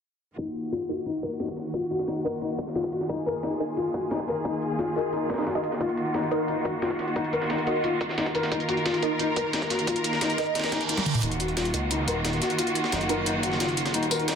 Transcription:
0.38 string section D#3 A#3 F4 F#4, felt piano D#4, kick, closed hi-hat
0.55 closed hi-hat
0.64 closed hi-hat
0.72 felt piano F4, snare, closed hi-hat, open hi-hat
0.81 closed hi-hat
0.89 synth stab D#4 A#4 D#5, felt piano F#4, closed hi-hat
1.06 felt piano D#4, closed hi-hat
1.23 felt piano A#4, kick, closed hi-hat
1.40 felt piano D#4, snare, closed hi-hat
1.48 kick, closed hi-hat
1.57 snare, closed hi-hat
1.65 closed hi-hat
1.74 felt piano F4, kick, closed hi-hat
1.82 closed hi-hat
1.91 felt piano F#4, closed hi-hat
1.99 snare
2.08 felt piano D#4, snare, closed hi-hat
2.16 closed hi-hat
2.25 synth stab D#4 A#4 D#5, felt piano A#4, closed hi-hat
2.42 felt piano D#4, closed hi-hat
2.59 kick, closed hi-hat
2.67 snare
2.75 felt piano F4, snare, closed hi-hat
2.84 kick, closed hi-hat
2.92 felt piano F#4, closed hi-hat
3.01 snare, closed hi-hat
3.09 felt piano D#4, string section G#4, kick, closed hi-hat
3.18 closed hi-hat
3.26 felt piano A#4, closed hi-hat
3.35 closed hi-hat
3.43 felt piano D#4, snare, closed hi-hat, open hi-hat
3.52 closed hi-hat
3.60 synth stab D#4 A#4 D#5, closed hi-hat
3.77 felt piano F4, closed hi-hat
3.94 felt piano F#4, kick, closed hi-hat
4.11 felt piano D#4, snare, closed hi-hat
4.19 kick, closed hi-hat
4.28 felt piano A#4, snare, closed hi-hat
4.36 closed hi-hat
4.45 felt piano D#4, kick, closed hi-hat
4.53 closed hi-hat
4.62 closed hi-hat
4.79 felt piano F4, snare, closed hi-hat
4.87 closed hi-hat
4.96 synth stab D#4 A#4 D#5, felt piano F#4, closed hi-hat
5.13 felt piano D#4, closed hi-hat
5.30 felt piano A#4, kick, snare, closed hi-hat, open hi-hat
5.34 snare, open hi-hat
5.38 synth stab D#4 A#4 D#5, snare, closed hi-hat, open hi-hat
5.42 snare, open hi-hat
5.47 felt piano F#4, snare, closed hi-hat
5.55 synth stab D#4 A#4 D#5, kick, closed hi-hat
5.64 closed hi-hat
5.72 snare, closed hi-hat
5.81 felt piano F4, string section F#4, kick, closed hi-hat
5.89 closed hi-hat
5.97 closed hi-hat
6.06 closed hi-hat
6.14 felt piano D#4, snare, closed hi-hat, open hi-hat
6.23 closed hi-hat
6.31 synth stab D#4 A#4 D#5, felt piano A#4, closed hi-hat
6.48 felt piano D#4, closed hi-hat
6.65 felt piano F#4, kick, closed hi-hat
6.82 felt piano F4, snare, closed hi-hat
6.91 kick, closed hi-hat
6.99 snare, closed hi-hat
7.08 closed hi-hat
7.16 felt piano D#4, kick, closed hi-hat
7.24 closed hi-hat
7.33 felt piano A#4, closed hi-hat
7.42 snare
7.50 felt piano D#4, snare, closed hi-hat
7.58 closed hi-hat
7.67 synth stab D#4 A#4 D#5, felt piano F#4, closed hi-hat
7.84 felt piano F4, closed hi-hat
8.01 kick, closed hi-hat
8.09 snare
8.18 felt piano D#4, snare, closed hi-hat
8.26 kick, closed hi-hat
8.35 felt piano A#4, closed hi-hat
8.43 snare, closed hi-hat
8.52 felt piano D#4, string section A#4, kick, closed hi-hat
8.60 closed hi-hat
8.69 felt piano F#4, closed hi-hat
8.77 closed hi-hat
8.86 felt piano F4, snare, closed hi-hat, open hi-hat
8.94 closed hi-hat
9.02 synth stab D#4 A#4 D#5, closed hi-hat
9.19 felt piano D#4, closed hi-hat
9.36 felt piano A#4, kick, closed hi-hat
9.53 felt piano D#4, snare, closed hi-hat
9.62 kick, closed hi-hat
9.70 felt piano F#4, snare, closed hi-hat
9.79 closed hi-hat
9.87 felt piano F4, kick, closed hi-hat
9.96 closed hi-hat
10.04 closed hi-hat
10.13 snare
10.21 felt piano D#4, snare, closed hi-hat
10.30 closed hi-hat
10.38 synth stab D#4 A#4 D#5, felt piano A#4, snare, closed hi-hat, open hi-hat
10.55 felt piano D#4, snare, closed hi-hat, open hi-hat, reverse cymbal
10.59 snare, open hi-hat
10.64 snare, open hi-hat
10.72 felt piano D#4, kick, snare, closed hi-hat
10.81 closed hi-hat
10.89 felt piano D#4, closed hi-hat
10.97 snare, closed hi-hat, high tom
11.06 closed hi-hat, mid tom
11.14 closed hi-hat, mid tom
11.23 detuned saw bass D#1, string section D#3 A#3 F4 F#4, felt piano D#4, closed hi-hat
11.32 closed hi-hat
11.40 felt piano F#4, closed hi-hat
11.48 closed hi-hat
11.57 felt piano F4, snare, closed hi-hat, open hi-hat
11.65 closed hi-hat
11.74 detuned saw bass C#2, synth stab D#4 A#4 D#5, closed hi-hat
11.91 felt piano D#4, closed hi-hat
12.08 detuned saw bass D#1, felt piano A#4, closed hi-hat
12.25 felt piano D#4, snare, closed hi-hat
12.33 closed hi-hat
12.42 felt piano F#4, snare, closed hi-hat
12.50 closed hi-hat
12.59 felt piano F4, closed hi-hat
12.67 closed hi-hat
12.75 closed hi-hat
12.84 snare
12.92 detuned saw bass F#1, felt piano D#4, snare, closed hi-hat
13.01 closed hi-hat
13.09 synth stab D#4 A#4 D#5, felt piano A#4, closed hi-hat
13.26 felt piano D#4, closed hi-hat
13.43 felt piano F#4, closed hi-hat
13.52 snare
13.60 felt piano F4, snare, closed hi-hat
13.69 closed hi-hat
13.77 closed hi-hat
13.86 snare, closed hi-hat
13.94 detuned saw bass D#1, felt piano D#4, closed hi-hat
14.03 closed hi-hat
14.11 felt piano A#4, closed hi-hat, tambourine
14.19 closed hi-hat
14.28 felt piano D#4, snare, closed hi-hat, open hi-hat

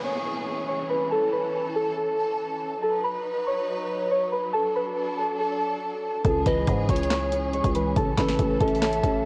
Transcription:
Already playing: string section E3 C#4 G#4, downlifter
0.04 synth keys C#5 C#6
0.68 synth keys C#5 C#6
0.89 synth keys B4 B5
1.10 string section A4, synth keys A4 A5
1.32 synth keys B4 B5
1.75 synth keys A4 A5
1.96 synth keys A4 A5
2.82 string section F#3 D#4 B4, synth keys A4 A5
3.04 synth keys B4 B5
3.47 synth keys C#5 C#6
4.11 synth keys C#5 C#6
4.32 synth keys B4 B5
4.53 string section D4 A4, synth keys A4 A5
4.75 synth keys B4 B5
5.18 synth keys A4 A5
5.39 synth keys A4 A5
6.25 808-style bass C#2, grand piano C#3, string section E3 C#4 G#4, synth keys A4 A5, kick, closed hi-hat
6.46 808-style bass C#2, grand piano E3, synth keys B4 B5, pan flute D#5, kick, closed hi-hat
6.67 808-style bass G#2, grand piano G#3, kick, closed hi-hat
6.89 808-style bass C#2, grand piano C#4, pan flute C#5, synth keys C#5 C#6, kick, closed hi-hat
6.96 closed hi-hat
7.03 closed hi-hat
7.11 grand piano C#5, snare, clap, closed hi-hat
7.32 grand piano C#4, closed hi-hat
7.53 grand piano G#3, synth keys C#5 C#6, closed hi-hat
7.64 808-style bass C#2, kick, closed hi-hat
7.75 grand piano E3, synth keys B4 B5, closed hi-hat
7.96 808-style bass A1, grand piano C#3, string section E3 A4, synth keys A4 A5, kick, closed hi-hat
8.18 808-style bass A1, grand piano E3, pan flute A4, synth keys B4 B5, kick, snare, clap, closed hi-hat
8.28 snare
8.39 808-style bass A1, grand piano A3, kick, closed hi-hat
8.60 808-style bass A1, grand piano C#4, synth keys A4 A5, pan flute E5, kick, closed hi-hat
8.68 closed hi-hat
8.75 closed hi-hat
8.82 synth keys A4 A5, grand piano C#5, snare, clap, closed hi-hat
8.93 closed hi-hat
9.03 808-style bass A1, grand piano C#4, kick, closed hi-hat

